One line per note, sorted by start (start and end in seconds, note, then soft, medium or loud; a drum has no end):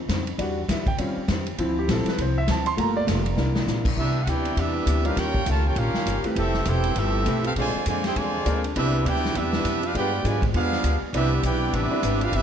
0.08 0.38 F2 loud
0.08 0.27 C#3 medium
0.08 0.28 F3 medium
0.08 0.29 C4 medium
0.08 0.29 D#4 medium
0.08 kick soft
0.08 snare medium
0.08 hi-hat pedal medium
0.08 ride medium
0.27 ride medium
0.38 0.67 E2 medium
0.38 0.57 E3 medium
0.38 0.60 G3 medium
0.38 0.60 D4 medium
0.38 0.58 D4 medium
0.38 0.61 F#4 medium
0.38 0.59 G4 medium
0.38 0.59 B4 medium
0.38 kick soft
0.38 ride medium
0.68 0.98 D2 loud
0.68 0.88 E3 medium
0.68 0.88 D4 medium
0.68 0.89 G4 medium
0.68 0.89 B4 medium
0.68 0.87 E5 medium
0.68 kick soft
0.68 snare medium
0.68 hi-hat pedal medium
0.68 ride medium
0.86 0.95 G5 medium
0.86 kick medium
0.86 ride medium
0.98 1.15 D#2 medium
0.98 1.18 D#3 soft
0.98 1.20 G3 soft
0.98 1.20 C4 soft
0.98 1.21 C#4 soft
0.98 1.18 C#4 medium
0.98 1.21 F4 medium
0.98 1.19 G4 medium
0.98 1.19 C5 medium
0.98 kick soft
0.98 ride medium
1.17 muted upright bass stroke soft
1.28 1.57 F2 loud
1.28 1.48 D#3 medium
1.28 1.48 C#4 medium
1.28 1.48 G4 medium
1.28 1.49 C5 medium
1.28 kick soft
1.28 snare medium
1.28 hi-hat pedal medium
1.28 ride medium
1.46 ride medium
1.58 1.87 D2 medium
1.58 1.77 D3 medium
1.58 1.78 F3 medium
1.58 2.74 F3 medium
1.58 2.74 C4 medium
1.58 1.78 C4 medium
1.58 2.75 E4 medium
1.58 1.79 E4 medium
1.58 kick soft
1.58 ride medium
1.79 1.89 G4 medium
1.88 2.05 A#1 loud
1.88 2.07 D3 medium
1.88 2.08 F3 medium
1.88 2.08 C4 medium
1.88 2.08 E4 medium
1.88 2.07 A4 medium
1.88 kick soft
1.88 snare medium
1.88 hi-hat pedal medium
1.88 ride medium
1.98 snare soft
2.06 2.19 B4 medium
2.06 muted upright bass stroke soft
2.06 snare medium
2.06 ride medium
2.18 2.47 C2 medium
2.18 2.37 D3 medium
2.18 2.38 F3 medium
2.18 2.38 C4 medium
2.18 2.39 E4 medium
2.18 2.37 C5 medium
2.18 kick soft
2.18 ride medium
2.38 2.49 E5 medium
2.47 2.77 D2 medium
2.47 2.67 D3 medium
2.47 2.67 F3 medium
2.47 2.68 C4 medium
2.47 2.68 E4 medium
2.47 2.67 A5 medium
2.47 kick soft
2.47 snare medium
2.47 hi-hat pedal medium
2.47 ride medium
2.66 2.78 C6 loud
2.66 ride medium
2.77 3.07 G1 medium
2.77 2.97 G3 soft
2.77 3.23 A3 medium
2.77 3.23 A#3 medium
2.77 2.97 A#3 medium
2.77 3.24 F4 medium
2.77 2.98 F4 medium
2.77 2.98 A4 medium
2.77 2.96 A#5 medium
2.77 kick soft
2.77 ride medium
2.97 3.04 D5 loud
3.07 3.35 F1 loud
3.07 3.26 G3 medium
3.07 3.27 A#3 medium
3.07 3.27 F4 medium
3.07 3.28 A4 medium
3.07 kick soft
3.07 snare medium
3.07 hi-hat pedal medium
3.07 ride medium
3.26 ride medium
3.35 3.66 C2 medium
3.35 3.56 C3 medium
3.35 3.56 E3 medium
3.35 3.94 A#3 medium
3.35 3.57 A#3 medium
3.35 3.94 D4 soft
3.35 3.95 E4 medium
3.35 snare medium
3.40 3.58 D4 medium
3.55 snare medium
3.67 3.96 A#1 loud
3.67 3.86 C3 medium
3.67 3.87 E3 medium
3.67 3.87 A#3 medium
3.67 3.87 D4 medium
3.67 snare medium
3.67 hi-hat pedal medium
3.85 kick medium
3.85 crash loud
3.96 4.26 C2 medium
3.96 4.16 C3 medium
3.96 5.16 C3 medium
3.96 5.16 E3 medium
3.96 4.17 E3 soft
3.96 4.20 G3 medium
3.96 4.20 B3 medium
3.96 5.16 B3 medium
3.96 4.18 B3 medium
3.96 5.16 D4 loud
3.96 4.21 D4 medium
3.96 4.19 E4 medium
3.96 4.21 G4 medium
3.96 4.21 B4 medium
3.96 4.20 E5 loud
3.96 kick soft
4.00 4.18 D4 medium
4.23 4.56 D2 medium
4.23 4.46 C3 medium
4.23 4.28 F#5 medium
4.27 4.46 E3 medium
4.27 4.55 B3 medium
4.27 4.47 B3 medium
4.27 4.47 D4 medium
4.27 4.55 E4 medium
4.27 4.58 E4 medium
4.27 4.57 G4 medium
4.27 4.58 B4 medium
4.27 4.58 D5 medium
4.27 4.58 G5 medium
4.27 kick soft
4.27 hi-hat pedal medium
4.27 ride medium
4.45 ride medium
4.56 4.86 E2 medium
4.56 4.76 C3 medium
4.56 4.76 E3 medium
4.56 5.05 G3 medium
4.56 5.05 B3 medium
4.56 4.77 B3 medium
4.56 5.04 D4 medium
4.56 4.77 D4 medium
4.56 5.04 E4 medium
4.56 5.04 G4 medium
4.56 5.04 B4 medium
4.56 5.06 E5 medium
4.56 kick soft
4.56 ride medium
4.86 5.16 D2 loud
4.86 5.06 C3 medium
4.86 5.06 E3 medium
4.86 5.07 B3 medium
4.86 5.07 D4 medium
4.86 kick soft
4.86 hi-hat pedal medium
4.86 ride medium
5.05 5.16 G3 medium
5.05 5.16 C#4 medium
5.05 5.17 D4 medium
5.05 5.16 D#4 medium
5.05 5.17 F4 medium
5.05 5.16 F4 medium
5.05 5.17 G4 medium
5.05 5.16 A#4 medium
5.05 5.17 B4 medium
5.05 5.17 F5 medium
5.05 ride medium
5.16 5.45 D#2 medium
5.16 5.36 D#3 medium
5.16 6.35 D#3 medium
5.16 6.35 G3 medium
5.16 5.47 A#3 medium
5.16 5.47 C#4 medium
5.16 6.35 C#4 medium
5.16 5.36 C#4 medium
5.16 6.35 F4 medium
5.16 5.37 F4 medium
5.16 5.48 F4 medium
5.16 5.47 G4 medium
5.16 5.37 G4 medium
5.16 5.48 A#4 medium
5.16 5.47 C#5 medium
5.16 5.47 G5 loud
5.16 kick soft
5.16 snare soft
5.16 ride medium
5.34 kick medium
5.46 5.75 C#2 loud
5.46 5.66 D#3 medium
5.46 5.63 A3 medium
5.46 5.66 C#4 medium
5.46 5.66 F4 medium
5.46 5.65 F4 medium
5.46 5.67 G4 medium
5.46 5.65 A#4 medium
5.46 5.64 C#5 medium
5.46 5.65 A5 loud
5.46 kick soft
5.46 hi-hat pedal medium
5.46 ride medium
5.64 5.76 A#3 medium
5.64 5.76 C#4 medium
5.64 5.77 F4 medium
5.64 5.77 G4 medium
5.64 5.77 A#4 medium
5.64 5.78 C#5 medium
5.64 5.78 G5 medium
5.76 5.93 A#1 loud
5.76 5.96 D#3 soft
5.76 6.25 A#3 medium
5.76 6.25 C#4 medium
5.76 5.96 C#4 medium
5.76 6.25 C#4 medium
5.76 6.25 F4 medium
5.76 5.97 F4 medium
5.76 6.25 G4 medium
5.76 5.97 G4 medium
5.76 6.25 A#4 medium
5.76 6.25 F5 loud
5.76 kick soft
5.76 ride medium
5.94 muted upright bass stroke soft
5.94 snare medium
6.06 6.23 G1 loud
6.06 6.26 D#3 medium
6.06 6.26 C#4 medium
6.06 6.26 F4 medium
6.06 6.27 G4 medium
6.06 kick soft
6.06 hi-hat pedal medium
6.06 ride medium
6.24 6.35 A3 medium
6.24 6.35 C4 medium
6.24 6.36 E4 medium
6.24 6.36 G4 medium
6.24 6.36 B4 medium
6.24 muted upright bass stroke soft
6.24 ride medium
6.35 6.65 F1 medium
6.35 7.55 E3 medium
6.35 6.55 F3 medium
6.35 6.64 A3 medium
6.35 7.55 A3 medium
6.35 6.56 B3 medium
6.35 6.64 C4 medium
6.35 6.65 C4 medium
6.35 6.64 E4 medium
6.35 6.56 E4 medium
6.35 7.55 G4 loud
6.35 6.65 G4 medium
6.35 6.65 A4 medium
6.35 6.57 A4 medium
6.35 7.54 B4 medium
6.35 6.65 E5 medium
6.35 kick soft
6.35 ride medium
6.54 snare soft
6.65 6.95 E1 loud
6.65 6.85 F3 medium
6.65 6.86 B3 medium
6.65 6.95 C4 medium
6.65 6.95 E4 medium
6.65 6.97 E4 medium
6.65 6.87 E4 medium
6.65 6.96 G4 medium
6.65 6.96 A4 medium
6.65 6.87 A4 medium
6.65 6.97 C5 medium
6.65 6.97 G5 medium
6.65 kick soft
6.65 hi-hat pedal medium
6.65 ride medium
6.83 ride medium
6.96 7.25 G1 loud
6.96 7.16 F3 medium
6.96 7.44 A3 medium
6.96 7.16 B3 medium
6.96 7.43 C4 medium
6.96 7.45 C4 medium
6.96 7.44 E4 medium
6.96 7.17 E4 medium
6.96 7.45 G4 medium
6.96 7.45 A4 medium
6.96 7.45 E5 medium
6.96 kick soft
6.96 ride medium
7.00 7.17 A4 medium
7.26 7.55 B1 loud
7.26 7.45 F3 medium
7.26 7.43 A3 medium
7.26 7.46 B3 medium
7.26 7.43 C4 medium
7.26 7.43 E4 medium
7.26 7.46 E4 medium
7.26 7.43 G4 medium
7.26 7.46 A4 medium
7.26 7.43 B4 medium
7.26 kick soft
7.26 hi-hat pedal medium
7.26 ride medium
7.44 7.50 A3 medium
7.44 7.49 C4 medium
7.44 7.51 C4 medium
7.44 7.50 F4 medium
7.44 7.51 G4 medium
7.44 7.51 A4 medium
7.44 7.51 F5 loud
7.44 ride medium
7.55 7.73 A#1 loud
7.55 7.75 A#2 medium
7.55 9.93 C3 medium
7.55 7.83 D3 loud
7.55 7.84 F3 medium
7.55 7.84 G#3 medium
7.55 7.76 G#3 medium
7.55 8.75 G#3 medium
7.55 8.75 A#3 medium
7.55 7.76 C4 medium
7.55 9.93 D4 loud
7.55 7.77 D4 medium
7.55 7.85 F4 medium
7.55 7.85 C5 medium
7.55 7.85 D5 medium
7.55 7.85 G#5 loud
7.55 kick soft
7.55 ride medium
7.75 muted upright bass stroke soft
7.86 8.15 F2 loud
7.86 8.05 A#2 medium
7.86 8.02 D3 medium
7.86 8.03 F3 medium
7.86 8.03 G#3 medium
7.86 8.05 G#3 medium
7.86 8.06 C4 medium
7.86 8.06 D4 medium
7.86 8.04 F4 medium
7.86 8.04 C5 medium
7.86 8.04 D5 medium
7.86 8.04 G#5 medium
7.86 kick soft
7.86 hi-hat pedal medium
7.86 ride medium
8.04 8.16 E4 medium
8.04 8.15 G4 medium
8.04 8.16 G#4 medium
8.04 8.16 C5 medium
8.04 8.16 G5 loud
8.04 snare medium
8.04 ride medium
8.15 8.45 E2 medium
8.15 8.35 A#2 medium
8.15 8.64 D3 loud
8.15 8.64 F3 medium
8.15 8.64 G#3 loud
8.15 8.35 G#3 medium
8.15 8.36 C4 medium
8.15 8.36 D4 medium
8.15 8.64 F4 medium
8.15 8.64 C5 medium
8.15 8.64 D5 medium
8.15 8.64 G#5 loud
8.15 kick soft
8.15 ride medium
8.46 8.75 D2 loud
8.46 8.65 A#2 medium
8.46 8.65 G#3 medium
8.46 8.62 C4 medium
8.46 8.66 C4 medium
8.46 8.62 D4 medium
8.46 8.66 D4 medium
8.46 8.62 F4 medium
8.46 8.62 G#4 medium
8.46 8.62 A#4 medium
8.46 kick soft
8.46 hi-hat pedal medium
8.46 ride medium
8.64 ride medium
8.74 9.04 C2 medium
8.74 8.94 C3 soft
8.74 9.93 E3 medium
8.74 8.95 E3 medium
8.74 9.03 G3 medium
8.74 9.03 B3 medium
8.74 8.96 B3 medium
8.74 9.20 C4 medium
8.74 9.20 D4 medium
8.74 9.04 D4 medium
8.74 9.03 E4 medium
8.74 9.20 E4 medium
8.74 9.20 G4 medium
8.74 9.04 G4 medium
8.74 9.20 B4 medium
8.74 9.04 B4 medium
8.74 9.04 E5 loud
8.74 kick soft
8.74 ride medium
8.79 8.96 D4 medium
9.05 9.34 D2 medium
9.05 9.24 C3 medium
9.05 9.25 E3 medium
9.05 9.33 B3 medium
9.05 9.25 B3 medium
9.05 9.26 D4 medium
9.05 9.33 E4 medium
9.05 9.36 E4 medium
9.05 9.35 G4 medium
9.05 9.35 B4 medium
9.05 9.36 D5 medium
9.05 9.36 G5 loud
9.05 kick soft
9.05 hi-hat pedal medium
9.05 ride medium
9.16 snare soft
9.25 snare medium
9.34 9.64 E2 loud
9.34 9.54 C3 medium
9.34 9.54 E3 medium
9.34 9.82 G3 medium
9.34 9.82 B3 loud
9.34 9.55 B3 medium
9.34 9.83 D4 medium
9.34 9.56 D4 medium
9.34 9.82 E4 loud
9.34 9.83 G4 medium
9.34 9.83 B4 medium
9.34 9.83 E5 loud
9.34 kick soft
9.34 ride medium
9.53 snare medium
9.64 9.93 F2 medium
9.64 9.84 C3 medium
9.64 9.84 E3 medium
9.64 9.84 B3 medium
9.64 9.85 D4 medium
9.64 kick soft
9.64 hi-hat pedal medium
9.64 ride medium
9.83 9.95 D4 medium
9.83 9.95 F4 medium
9.83 9.95 G4 medium
9.83 9.95 B4 medium
9.83 9.95 F5 loud
9.83 ride medium
9.94 10.24 G2 medium
9.94 10.96 F3 medium
9.94 10.14 G3 medium
9.94 10.96 G3 medium
9.94 10.96 G#3 medium
9.94 10.11 G#3 medium
9.94 10.23 B3 loud
9.94 10.14 B3 medium
9.94 10.11 D4 medium
9.94 10.23 D4 loud
9.94 10.11 F4 medium
9.94 10.23 F4 medium
9.94 10.15 F4 medium
9.94 10.11 G4 medium
9.94 10.23 G4 medium
9.94 10.15 G#4 medium
9.94 10.11 B4 medium
9.94 10.23 B4 medium
9.94 10.23 D5 medium
9.94 10.23 G5 loud
9.94 kick soft
9.94 ride medium
10.24 10.53 G#2 loud
10.24 10.42 D3 medium
10.24 10.42 F3 medium
10.24 10.43 G3 medium
10.24 10.42 G#3 loud
10.24 10.41 G#3 medium
10.24 10.44 B3 medium
10.24 10.41 D4 medium
10.24 10.41 F4 medium
10.24 10.44 F4 medium
10.24 10.43 F4 medium
10.24 10.41 G4 medium
10.24 10.44 G#4 medium
10.24 10.43 B4 medium
10.24 10.41 D5 medium
10.24 10.43 D5 medium
10.24 10.43 G#5 medium
10.24 kick soft
10.24 hi-hat pedal medium
10.24 ride medium
10.42 kick medium
10.42 ride medium
10.54 10.83 E2 loud
10.54 10.73 G3 medium
10.54 10.99 B3 loud
10.54 10.74 B3 medium
10.54 10.98 D4 loud
10.54 10.99 D4 medium
10.54 10.98 F4 medium
10.54 10.74 F4 medium
10.54 10.99 G#4 medium
10.54 10.75 G#4 medium
10.54 10.99 B4 medium
10.54 10.99 F5 loud
10.54 kick soft
10.54 ride medium
10.72 snare soft
10.84 11.00 D2 loud
10.84 11.03 G3 medium
10.84 11.04 B3 medium
10.84 11.04 F4 medium
10.84 11.04 G#4 medium
10.84 kick soft
10.84 hi-hat pedal medium
10.84 ride medium
11.02 muted upright bass stroke soft
11.12 11.42 C2 loud
11.12 11.32 C3 soft
11.12 12.42 C3 loud
11.12 12.42 E3 medium
11.12 11.33 E3 soft
11.12 11.42 G3 medium
11.12 11.42 B3 medium
11.12 11.34 B3 medium
11.12 11.30 C4 medium
11.12 12.42 D4 loud
11.12 11.30 D4 medium
11.12 11.42 D4 medium
11.12 11.34 D4 medium
11.12 11.42 E4 medium
11.12 11.30 E4 medium
11.12 11.42 G4 medium
11.12 11.30 G4 medium
11.12 11.30 B4 medium
11.12 11.42 B4 medium
11.12 11.42 E5 loud
11.12 kick soft
11.12 ride medium
11.43 11.72 B1 loud
11.43 11.62 C3 medium
11.43 11.63 E3 medium
11.43 11.72 B3 medium
11.43 11.63 B3 medium
11.43 11.63 D4 medium
11.43 11.71 E4 medium
11.43 11.72 E4 medium
11.43 11.72 G4 medium
11.43 11.72 B4 medium
11.43 11.72 D5 medium
11.43 11.71 G5 loud
11.43 kick soft
11.43 hi-hat pedal medium
11.43 ride medium
11.73 11.90 A1 loud
11.73 11.92 C3 medium
11.73 11.93 E3 medium
11.73 12.21 G3 loud
11.73 12.21 B3 loud
11.73 11.94 B3 medium
11.73 12.22 D4 medium
11.73 11.94 D4 medium
11.73 12.21 E4 medium
11.73 12.22 G4 medium
11.73 12.22 B4 medium
11.73 12.22 E5 loud
11.73 kick soft
11.73 ride medium
11.91 12.02 C4 medium
11.91 12.02 D4 medium
11.91 12.02 E4 medium
11.91 12.02 G4 medium
11.91 12.02 B4 medium
11.91 muted upright bass stroke soft
12.03 12.31 G#1 loud
12.03 12.22 C3 medium
12.03 12.23 E3 medium
12.03 12.23 B3 medium
12.03 12.23 D4 medium
12.03 kick soft
12.03 hi-hat pedal medium
12.03 ride medium
12.21 12.34 D4 medium
12.21 12.33 F4 medium
12.21 12.34 G4 medium
12.21 12.34 B4 medium
12.21 12.34 F5 loud
12.21 ride medium
12.32 12.42 G1 medium
12.32 12.42 C3 medium
12.32 12.42 E3 soft
12.32 12.42 G3 medium
12.32 12.42 B3 medium
12.32 12.42 D4 loud
12.32 12.42 D4 medium
12.32 12.42 E4 loud
12.32 12.42 G4 loud
12.32 12.42 B4 loud
12.32 12.42 E5 loud
12.32 kick soft
12.32 ride medium